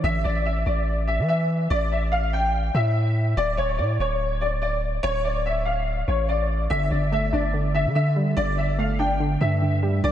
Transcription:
0.04 808-style bass A1, upright piano E5
0.24 808-style bass A1, upright piano D5
0.45 upright piano E5
0.66 808-style bass A1, upright piano D5
1.07 upright piano E5
1.19 808-style bass E3
1.28 upright piano E5
1.70 808-style bass A1, upright piano D5
1.92 upright piano E5
2.12 upright piano F5
2.33 upright piano G5
2.74 808-style bass A2, upright piano E5
3.37 808-style bass D1, upright piano D5
3.57 808-style bass D1, upright piano C#5
3.78 808-style bass A2, upright piano D5
3.99 808-style bass D1, upright piano C#5
4.41 upright piano D5
4.62 upright piano D5
5.03 808-style bass D1, upright piano C#5
5.24 upright piano D5
5.46 upright piano E5
5.65 upright piano F5
6.08 808-style bass A1, upright piano C#5
6.29 upright piano D5
6.70 808-style bass G1, synth pluck D3, upright piano E5
6.91 808-style bass G1, synth pluck D3, upright piano D5
7.12 synth pluck A3, upright piano E5
7.33 808-style bass G1, synth pluck D4, upright piano D5
7.54 synth pluck D3
7.74 synth pluck D3, upright piano E5
7.86 808-style bass D3
7.95 synth pluck D3, upright piano E5
8.16 synth pluck G3
8.37 808-style bass G1, synth pluck D3, upright piano D5
8.58 synth pluck D3, upright piano E5
8.79 synth pluck A3, upright piano F5
8.99 synth pluck D4, upright piano G5
9.20 synth pluck D3
9.41 808-style bass G2, synth pluck D3, upright piano E5
9.62 synth pluck D3
9.83 synth pluck G3
10.04 808-style bass A#1, synth pluck D3, upright piano D5

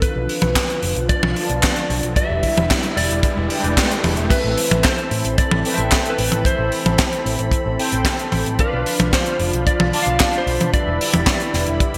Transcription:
Already playing: riser
0.02 analog synth pad D3 F3 F4, analog polysynth D4 F4 B4 F5, lead electric guitar B4, kick, closed hi-hat
0.16 picked electric bass B1
0.29 open hi-hat
0.42 picked electric bass B1, closed hi-hat, high tom
0.56 kick, snare, clap, closed hi-hat
0.70 closed hi-hat
0.83 picked electric bass F1, open hi-hat
0.96 picked electric bass B1, closed hi-hat
1.09 lead electric guitar D5, kick, closed hi-hat
1.23 picked electric bass B1, high tom
1.36 analog polysynth D4 F4 B4 A5, open hi-hat
1.49 picked electric bass B1, closed hi-hat
1.63 kick, snare, clap, closed hi-hat
1.76 closed hi-hat
1.90 picked electric bass B1, open hi-hat
2.03 picked electric bass B1, closed hi-hat
2.16 analog synth pad G3 E4, analog polysynth D4 G4 B4 E5, lead electric guitar E5, kick, closed hi-hat
2.30 picked electric bass E1
2.43 kick, open hi-hat
2.57 picked electric bass E1, closed hi-hat, high tom
2.71 kick, snare, clap, closed hi-hat
2.83 closed hi-hat
2.97 picked electric bass E1, lead electric guitar D5, open hi-hat
3.10 picked electric bass E1, closed hi-hat
3.23 kick, closed hi-hat
3.37 picked electric bass E1
3.50 analog polysynth D4 G4 B4 G5, open hi-hat
3.64 picked electric bass E1, closed hi-hat
3.77 kick, snare, clap, closed hi-hat
3.91 closed hi-hat
4.04 picked electric bass E1, open hi-hat, high tom
4.17 picked electric bass E1, closed hi-hat
4.30 analog synth pad E3 C4 A4 B5, analog polysynth C4 A4 E5, lead electric guitar B4, kick, closed hi-hat, crash
4.44 picked electric bass A1
4.58 open hi-hat
4.71 picked electric bass A1, high tom
4.83 lead electric guitar C5, kick, snare, clap, closed hi-hat
4.98 closed hi-hat
5.11 picked electric bass A2, open hi-hat
5.25 picked electric bass A1, closed hi-hat
5.38 lead electric guitar D5, kick, closed hi-hat
5.51 picked electric bass A1, high tom
5.65 analog polysynth C4 A4 B4 G5, open hi-hat
5.74 lead electric guitar E5, closed hi-hat
5.78 picked electric bass A1
5.91 kick, snare, clap, closed hi-hat
6.06 closed hi-hat
6.10 lead electric guitar B4
6.18 picked electric bass A1, open hi-hat
6.32 picked electric bass A1, closed hi-hat, high tom
6.45 analog polysynth C4 A4 C5 E5, lead electric guitar C5, kick, closed hi-hat
6.59 picked electric bass A1
6.72 open hi-hat
6.85 picked electric bass A1, closed hi-hat, high tom
6.98 kick, snare, clap, closed hi-hat
7.13 closed hi-hat
7.26 picked electric bass A1, open hi-hat
7.39 picked electric bass A1, closed hi-hat
7.51 kick, closed hi-hat
7.66 picked electric bass A1
7.79 analog polysynth C4 A4 C5 G5, open hi-hat
7.92 picked electric bass A1, closed hi-hat
8.05 kick, snare, clap, closed hi-hat
8.19 closed hi-hat
8.32 picked electric bass A1, open hi-hat, high tom
8.46 picked electric bass A1, closed hi-hat
8.59 analog synth pad D3 F3 F4 B5, analog polysynth D4 F4 D5 F5, lead electric guitar B4, kick, closed hi-hat
8.73 picked electric bass B1
8.86 open hi-hat
8.99 picked electric bass B1, closed hi-hat, high tom
9.13 lead electric guitar C5, kick, snare, clap, closed hi-hat
9.26 closed hi-hat
9.40 picked electric bass F1, open hi-hat
9.53 picked electric bass B1, closed hi-hat
9.67 lead electric guitar D5, kick, closed hi-hat
9.80 picked electric bass B1, high tom
9.93 analog polysynth D4 F4 D5 A5, open hi-hat
10.02 lead electric guitar F5, closed hi-hat
10.07 picked electric bass B1
10.20 kick, snare, clap, closed hi-hat
10.33 closed hi-hat
10.38 lead electric guitar C5
10.47 picked electric bass B1, open hi-hat
10.60 picked electric bass B1, closed hi-hat, high tom
10.73 analog synth pad G3 E4, analog polysynth D4 G4 B4 E5, lead electric guitar D5, kick, closed hi-hat
10.87 picked electric bass E1
11.01 open hi-hat
11.13 picked electric bass E1, closed hi-hat, high tom
11.27 kick, snare, clap, closed hi-hat
11.40 closed hi-hat
11.54 picked electric bass E1, snare, open hi-hat
11.67 picked electric bass E1, closed hi-hat
11.80 kick, closed hi-hat
11.94 picked electric bass E1, closed hi-hat

